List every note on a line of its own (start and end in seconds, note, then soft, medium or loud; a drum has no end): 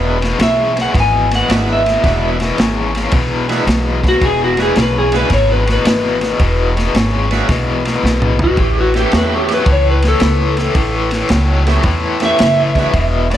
0.00 0.32 E1 medium
0.00 0.19 E2 medium
0.00 0.19 B2 medium
0.00 0.18 G#3 medium
0.00 0.18 B3 medium
0.00 0.18 D4 soft
0.00 0.19 E4 soft
0.00 0.19 F#4 medium
0.21 0.38 E2 medium
0.21 0.39 B2 medium
0.21 snare soft
0.21 ride medium
0.39 0.86 B1 medium
0.39 0.73 E2 medium
0.39 0.73 C#3 medium
0.39 0.77 E5 medium
0.39 snare loud
0.39 ride medium
0.76 0.93 E2 medium
0.76 0.93 C#3 medium
0.76 snare soft
0.76 ride medium
0.82 0.97 F#5 medium
0.95 1.41 G#1 medium
0.95 1.28 E2 medium
0.95 1.28 B2 medium
0.95 kick loud
0.95 snare soft
0.95 ride medium
1.00 1.33 G#5 medium
1.31 1.48 E2 medium
1.31 1.48 B2 medium
1.31 1.69 F#5 medium
1.31 snare soft
1.31 ride medium
1.48 1.96 G#1 medium
1.48 1.83 E2 medium
1.48 1.83 B2 loud
1.48 1.82 G#3 medium
1.48 1.82 B3 soft
1.48 1.82 D4 medium
1.48 1.83 E4 medium
1.48 1.83 F#4 medium
1.48 snare loud
1.48 ride medium
1.73 2.76 E5 medium
1.86 2.02 E2 medium
1.86 2.03 B2 medium
1.86 snare soft
1.86 ride medium
2.04 2.50 E1 medium
2.04 2.37 E2 medium
2.04 2.37 B2 loud
2.04 2.37 G#3 medium
2.04 2.37 B3 medium
2.04 2.37 D4 medium
2.04 2.37 E4 medium
2.04 2.38 F#4 medium
2.04 kick loud
2.04 snare soft
2.04 ride medium
2.40 2.57 E2 medium
2.40 2.58 B2 medium
2.40 snare soft
2.40 ride medium
2.58 3.05 G#1 medium
2.58 2.92 E2 medium
2.58 2.92 C#3 medium
2.58 snare loud
2.58 ride medium
2.95 3.11 E2 medium
2.95 3.12 C#3 medium
2.95 snare soft
2.95 ride medium
3.12 3.59 B1 medium
3.12 3.46 E2 medium
3.12 3.46 B2 loud
3.12 kick loud
3.12 ride medium
3.48 3.65 E2 medium
3.48 3.66 B2 medium
3.48 3.65 G#3 medium
3.48 3.66 B3 medium
3.48 3.66 D4 medium
3.48 3.66 E4 medium
3.48 3.66 F#4 medium
3.48 snare soft
3.48 ride medium
3.66 4.13 B1 loud
3.66 4.00 E2 medium
3.66 4.00 B2 loud
3.66 snare loud
3.66 ride medium
4.03 4.20 E2 medium
4.03 4.20 B2 medium
4.03 kick medium
4.03 snare soft
4.03 ride medium
4.08 4.24 F#4 loud
4.21 4.68 E1 medium
4.21 4.54 E2 medium
4.21 4.55 B2 loud
4.21 kick loud
4.21 ride medium
4.25 4.41 G#4 loud
4.44 4.60 F#4 medium
4.57 4.74 E2 medium
4.57 4.75 B2 medium
4.57 4.75 G#3 medium
4.57 4.75 B3 medium
4.57 4.75 D4 medium
4.57 4.75 E4 medium
4.57 4.76 F#4 medium
4.57 snare soft
4.57 ride medium
4.62 4.78 G#4 medium
4.75 5.23 B1 medium
4.75 5.09 E2 medium
4.75 5.09 C#3 medium
4.75 snare medium
4.75 ride medium
4.82 4.97 B4 medium
4.98 5.14 G#4 medium
5.12 5.29 E2 medium
5.12 5.29 C#3 loud
5.12 5.29 G#3 medium
5.12 5.29 B3 medium
5.12 5.30 D4 medium
5.12 5.30 E4 medium
5.12 5.30 F#4 medium
5.12 snare soft
5.12 ride medium
5.16 5.32 B4 medium
5.30 5.77 G#1 medium
5.30 5.64 E2 medium
5.30 5.64 B2 medium
5.30 5.50 C#5 medium
5.30 kick loud
5.30 snare soft
5.30 ride medium
5.52 5.68 B4 medium
5.67 5.83 E2 medium
5.67 5.84 B2 medium
5.67 snare soft
5.67 ride medium
5.73 7.30 B4 medium
5.85 6.31 G#1 medium
5.85 6.18 E2 medium
5.85 6.18 B2 medium
5.85 snare loud
5.85 ride medium
6.21 6.38 E2 medium
6.21 6.38 B2 medium
6.21 snare soft
6.21 ride medium
6.39 6.86 E1 medium
6.39 6.73 E2 medium
6.39 6.74 B2 loud
6.39 kick medium
6.39 ride medium
6.76 6.93 E2 medium
6.76 6.93 B2 medium
6.76 snare soft
6.76 ride medium
6.95 7.41 G#1 medium
6.95 7.28 E2 medium
6.95 7.28 C#3 medium
6.95 snare loud
6.95 ride medium
7.31 7.48 E2 medium
7.31 7.48 C#3 medium
7.31 7.47 G#3 medium
7.31 7.47 B3 medium
7.31 7.48 D4 medium
7.31 7.48 E4 medium
7.31 7.48 F#4 medium
7.31 snare soft
7.31 ride medium
7.49 7.95 B1 medium
7.49 7.82 E2 medium
7.49 7.82 B2 medium
7.49 kick loud
7.49 snare soft
7.49 ride medium
7.85 8.02 E2 medium
7.85 8.02 B2 medium
7.85 snare soft
7.85 ride medium
8.03 8.50 B1 medium
8.03 8.37 E2 medium
8.03 8.37 B2 medium
8.03 snare medium
8.22 mid tom medium
8.39 8.57 E2 medium
8.39 8.57 B2 medium
8.39 floor tom medium
8.44 8.60 F#4 loud
8.57 9.04 A1 loud
8.57 8.91 A2 medium
8.57 8.91 E3 medium
8.57 kick medium
8.57 ride medium
8.61 8.77 G4 medium
8.81 8.96 F#4 medium
8.94 9.11 A2 medium
8.94 9.11 E3 medium
8.94 9.64 A3 medium
8.94 9.64 B3 medium
8.94 9.64 C#4 medium
8.94 9.65 E4 medium
8.94 9.65 G4 medium
8.94 snare soft
8.94 ride medium
8.99 9.15 G4 medium
9.12 9.59 E2 medium
9.12 9.46 A2 medium
9.12 9.46 F#3 medium
9.12 snare loud
9.12 ride medium
9.18 9.33 B4 medium
9.36 9.51 G4 medium
9.49 9.65 A2 medium
9.49 9.66 F#3 medium
9.49 snare soft
9.49 ride medium
9.54 9.69 B4 medium
9.66 10.13 C#2 medium
9.66 10.00 A2 medium
9.66 10.00 E3 medium
9.66 kick loud
9.66 ride medium
9.72 9.87 C#5 medium
9.91 10.06 B4 medium
10.02 10.20 A2 medium
10.02 10.20 E3 medium
10.02 snare soft
10.02 ride medium
10.08 11.65 A4 medium
10.20 10.67 C#2 medium
10.20 10.54 A2 medium
10.20 10.55 E3 loud
10.20 snare loud
10.20 ride medium
10.57 10.74 A2 medium
10.57 10.75 E3 medium
10.57 snare soft
10.57 ride medium
10.75 11.21 A1 loud
10.75 11.09 A2 medium
10.75 11.09 E3 loud
10.75 kick medium
10.75 ride medium
11.11 11.29 A2 medium
11.11 11.29 E3 medium
11.11 snare soft
11.11 ride medium
11.29 11.76 C#2 medium
11.29 11.63 A2 medium
11.29 11.64 F#3 medium
11.29 snare loud
11.29 ride medium
11.66 11.83 A2 medium
11.66 11.83 F#3 medium
11.66 11.83 A3 medium
11.66 11.83 B3 medium
11.66 11.84 C#4 medium
11.66 11.84 E4 medium
11.66 11.84 G4 medium
11.66 snare soft
11.66 ride medium
11.83 12.31 E2 medium
11.83 12.18 A2 medium
11.83 12.18 E3 medium
11.83 kick loud
11.83 ride medium
12.20 12.37 A2 medium
12.20 12.38 E3 medium
12.20 12.38 A3 medium
12.20 12.38 B3 medium
12.20 12.38 C#4 medium
12.20 12.39 E4 medium
12.20 12.39 G4 medium
12.20 snare soft
12.20 ride medium
12.25 13.29 E5 loud
12.39 12.86 F#1 medium
12.39 12.72 A2 medium
12.39 12.73 E3 loud
12.39 snare loud
12.39 ride medium
12.75 12.92 A2 medium
12.75 12.92 E3 medium
12.75 12.92 G#3 medium
12.75 12.92 B3 medium
12.75 12.93 D4 medium
12.75 12.93 E4 medium
12.75 12.93 F#4 medium
12.75 kick medium
12.75 snare soft
12.75 ride medium
12.93 13.37 E1 medium
12.93 13.27 E2 medium
12.93 13.27 B2 loud
12.93 kick loud
12.93 ride medium
13.30 13.37 E2 medium
13.30 13.37 B2 medium
13.30 snare soft
13.30 ride medium